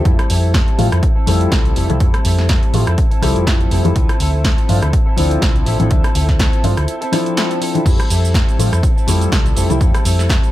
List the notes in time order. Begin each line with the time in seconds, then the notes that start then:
0.05 F2 F3 G3 A3 C4 E4 A4, kick, closed hi-hat
0.19 cross-stick, closed hi-hat
0.29 F2 G3 C4 E4 A4, open hi-hat
0.54 G3 C4 E4 A4, kick, snare, closed hi-hat
0.68 closed hi-hat
0.78 A2 F3 G3 A3 F4, open hi-hat
0.92 F2 C4 E4 A4, cross-stick, closed hi-hat
1.03 kick, closed hi-hat
1.16 C4 E4 A4
1.27 F2 F3 G3 A3 C4 E4 A4, open hi-hat
1.41 closed hi-hat
1.51 C2 G3 C4 E4 A4, kick, snare, closed hi-hat
1.65 C4 E4 A4, closed hi-hat
1.75 F1 G3 C4 E4 A4, open hi-hat
1.89 C2 F3 G3 A3 C4 E4 A4, closed hi-hat
2.00 F2 F3 G3 C4 E4 A4, kick, closed hi-hat
2.14 cross-stick, closed hi-hat
2.24 F2 G3 C4 E4 A4, open hi-hat
2.39 snare
2.49 G3 C4 E4 A4, kick, snare, closed hi-hat
2.63 closed hi-hat
2.73 A2 F3 G3 A3 F4, open hi-hat
2.86 F2 C4 E4 A4, cross-stick, closed hi-hat
2.98 kick, closed hi-hat
3.11 C4 E4 A4, muted fingered electric bass stroke, closed hi-hat
3.22 C2 F3 G3 A3 C4 E4 A4, cross-stick, open hi-hat
3.36 F1, closed hi-hat
3.46 G3 C4 E4 A4, kick, snare, closed hi-hat
3.60 C4 E4 A4, closed hi-hat
3.71 F1 G3 C4 E4 A4, open hi-hat
3.84 F2 F3 G3 A3 C4 E4 A4, closed hi-hat
3.95 D2 F3 C4 D4 E4 A4, kick, closed hi-hat
4.09 cross-stick, closed hi-hat
4.19 D2 F3 C4 E4 A4, open hi-hat
4.44 F3 C4 E4 A4, kick, snare, closed hi-hat
4.58 closed hi-hat
4.69 G2 F3 C4 D4 F4, open hi-hat
4.82 D2 C4 E4 A4, cross-stick, closed hi-hat
4.93 kick, closed hi-hat
5.06 C4 E4 A4
5.16 D2 F3 C4 D4 E4 A4, open hi-hat
5.31 closed hi-hat
5.41 C2 F3 A4, kick, snare, closed hi-hat
5.55 C4 E4 A4, closed hi-hat
5.66 A1 F3 C4 E4 A4, open hi-hat
5.79 A1 F3 C4 D4 E4 A4, closed hi-hat
5.90 F3 C4 D4 E4 A4, kick, closed hi-hat
6.04 cross-stick, closed hi-hat
6.14 D2 F3 C4 E4 A4, open hi-hat
6.29 kick, snare
6.39 F3 C4 E4 A4, kick, snare, closed hi-hat
6.53 closed hi-hat
6.64 G2 F3 C4 D4 F4, open hi-hat
6.77 D2 C4 E4 A4, cross-stick, closed hi-hat
6.88 closed hi-hat
7.01 C4 E4 A4, closed hi-hat
7.12 F3 C4 D4 E4 A4, cross-stick, open hi-hat
7.26 closed hi-hat
7.37 F3 C4 E4 A4, snare, closed hi-hat
7.50 C4 E4 A4, closed hi-hat
7.61 F3 C4 E4 A4, open hi-hat
7.74 F3 C4 D4 E4 A4, closed hi-hat
7.85 F2 F3 G3 A3 C4 E4 A4, kick, closed hi-hat, crash, shaker
8.00 cross-stick, closed hi-hat, shaker
8.10 F2 G3 C4 E4 A4, open hi-hat, shaker
8.25 shaker
8.34 G3 C4 E4 A4, kick, snare, closed hi-hat, shaker
8.49 closed hi-hat, shaker
8.59 A2 F3 G3 A3 F4, open hi-hat, shaker
8.72 F2 C4 E4 A4, cross-stick, closed hi-hat, shaker
8.83 kick, closed hi-hat, shaker
8.96 C4 E4 A4, shaker
9.07 F2 F3 G3 A3 C4 E4 A4, open hi-hat, shaker
9.21 closed hi-hat, shaker
9.32 C2 G3 C4 E4 A4, kick, snare, closed hi-hat, shaker
9.45 C4 E4 A4, closed hi-hat, shaker
9.56 F1 G3 C4 E4 A4, open hi-hat, shaker
9.69 C2 F3 G3 A3 C4 E4 A4, closed hi-hat, shaker
9.80 F2 F3 G3 A3 C4 E4 A4, kick, closed hi-hat, shaker
9.95 cross-stick, closed hi-hat, shaker
10.04 F2 G3 C4 E4 A4, open hi-hat, shaker
10.19 snare, shaker
10.29 G3 C4 E4 A4, kick, snare, closed hi-hat, shaker
10.43 closed hi-hat, shaker